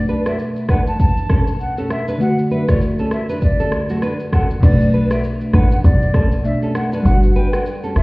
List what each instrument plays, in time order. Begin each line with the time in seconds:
Already playing: synth keys B2 A3 D4 B4
0.08 nylon-string guitar D4 B4, shaker
0.26 nylon-string guitar F#4 D5, flute E5, cross-stick, shaker
0.39 shaker
0.56 shaker
0.69 nylon-string guitar D4 B4, flute F#5, kick, cross-stick, shaker
0.87 flute A5, shaker
0.99 flute A5, kick, shaker
1.17 shaker
1.30 nylon-string guitar C#4 A4, kick, cross-stick, shaker
1.47 shaker
1.60 flute F#5, shaker
1.78 nylon-string guitar C#4 A4, shaker
1.90 flute E5, cross-stick, shaker
2.08 nylon-string guitar D4 B4, shaker
2.18 synth keys D3 A3 F#4, flute F#5, shaker
2.23 synth keys D5
2.38 shaker
2.51 nylon-string guitar D4 B4, flute E5, shaker
2.68 nylon-string guitar E4 C#5, flute D5, kick, cross-stick, shaker
2.81 shaker
2.99 nylon-string guitar C#4 A4, shaker
3.11 flute E5, cross-stick, shaker
3.29 nylon-string guitar D4 B4, shaker
3.42 flute D5, kick, shaker
3.60 nylon-string guitar C#4 A4, shaker
3.72 cross-stick, shaker
3.89 nylon-string guitar A3 F#4, shaker
4.02 nylon-string guitar D4 B4, cross-stick, shaker
4.20 shaker
4.33 nylon-string guitar C#4 A4, flute F#5, kick, cross-stick, shaker
4.50 shaker
4.60 log drum bass B1, synth keys B2 A3 D4, flute D5, kick, crash, shaker
4.65 synth keys B4
4.81 shaker
4.93 nylon-string guitar D4 B4, shaker
5.11 nylon-string guitar F#4 D5, flute E5, cross-stick, shaker
5.24 shaker
5.41 shaker
5.53 log drum bass A1, nylon-string guitar D4 B4, flute F#5, kick, cross-stick, shaker
5.71 flute F#5, shaker
5.84 log drum bass B1, flute D5, kick, shaker
6.02 shaker
6.14 nylon-string guitar C#4 A4, kick, cross-stick, shaker
6.32 shaker
6.43 synth keys B2 A3 D4 D5, flute E5, shaker
6.62 nylon-string guitar C#4 A4, shaker
6.75 flute F#5, cross-stick, shaker
6.93 nylon-string guitar D4 B4, shaker
7.03 log drum bass G1, synth keys G3 D4 F#4, flute F#5, shaker
7.08 synth keys B4
7.23 shaker
7.36 nylon-string guitar D4 B4, flute G5, shaker
7.53 nylon-string guitar F#4 D5, flute F#5, cross-stick, shaker
7.66 shaker
7.83 nylon-string guitar C#4 A4, shaker
7.96 log drum bass F#1, flute E5, cross-stick, shaker